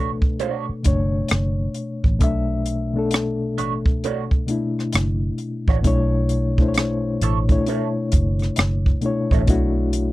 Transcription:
Already playing: fingered electric bass A1, reed electric piano B2 A3 D4 A4 B4 D5
0.22 kick
0.40 clean electric guitar G#3 D4 F#4 C#5, closed hi-hat
0.51 clean electric guitar A3
0.69 muted fingered electric bass stroke
0.83 fingered electric bass F#1, reed electric piano B2 A3 D4, kick, closed hi-hat
0.87 reed electric piano C#5
1.28 fingered electric bass F#1, cross-stick, closed hi-hat
1.74 closed hi-hat
2.04 fingered electric bass A1, kick
2.19 fingered electric bass B1, reed electric piano B2 A3 D4, kick, closed hi-hat
2.24 reed electric piano E5
2.66 closed hi-hat
2.94 reed electric piano B2 A3 D4
2.98 reed electric piano A4
3.11 cross-stick, closed hi-hat
3.58 fingered electric bass A1, clean electric guitar A3 D4 F#4 C#5, closed hi-hat
3.86 kick
4.04 clean electric guitar A3 D4 F#4 C#5, closed hi-hat
4.31 kick
4.46 reed electric piano B2 A3 D4, closed hi-hat
4.51 reed electric piano E4
4.79 cross-stick
4.92 fingered electric bass F#1, cross-stick, closed hi-hat
5.38 closed hi-hat
5.68 fingered electric bass A1, clean electric guitar A3 D4 F#4 C#5, kick
5.82 fingered electric bass B1, reed electric piano B2 A3 D4 E4, kick, closed hi-hat
5.87 reed electric piano C#5
6.29 closed hi-hat
6.57 reed electric piano B2 A3 D4 E4, kick
6.62 reed electric piano C5
6.68 reed electric piano C#5
6.74 cross-stick, closed hi-hat
7.21 fingered electric bass A1, clean electric guitar D4 E4 A4 C#5, closed hi-hat
7.48 reed electric piano B2 A3 D4 E4, kick, closed hi-hat
7.52 reed electric piano C#5
7.67 clean electric guitar D4 E4 A4 C#5, closed hi-hat
8.12 fingered electric bass F#1, kick, closed hi-hat
8.39 cross-stick, closed hi-hat
8.56 fingered electric bass F#1, cross-stick, closed hi-hat
8.86 kick
9.01 reed electric piano B2 A3 D4 E4, closed hi-hat
9.06 reed electric piano C#5
9.31 fingered electric bass A1, clean electric guitar D4 E4 A4 C#5, kick, closed hi-hat
9.46 fingered electric bass B1, reed electric piano B2 A3 D4 E4, kick, closed hi-hat
9.50 reed electric piano F#4
9.93 closed hi-hat

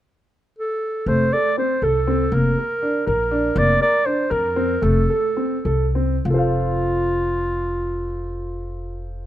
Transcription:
0.58 clarinet A4
1.06 upright bass F1, grand piano A3, clarinet C5
1.33 grand piano A4, clarinet D5
1.58 grand piano C4, clarinet C5
1.82 upright bass C2, grand piano A4, clarinet A4
2.07 grand piano C4
2.32 upright bass F1, grand piano A#3, clarinet A#4
2.58 grand piano A#4
2.82 grand piano D4
3.06 upright bass A#1, grand piano A#4, clarinet A#4
3.31 grand piano D4
3.55 upright bass F1, grand piano A#3, clarinet D5
3.81 grand piano A#4, clarinet D5
4.06 grand piano D4, clarinet C5
4.30 upright bass F2, grand piano A#4, clarinet A#4
4.56 grand piano C4
4.82 upright bass F1, grand piano A3, clarinet A4
5.10 grand piano A4
5.37 grand piano C4
5.65 upright bass C2, grand piano A4
5.95 grand piano C4
6.25 upright bass F1, grand piano F4, clarinet F4
6.30 grand piano A4 C5
6.38 grand piano F5

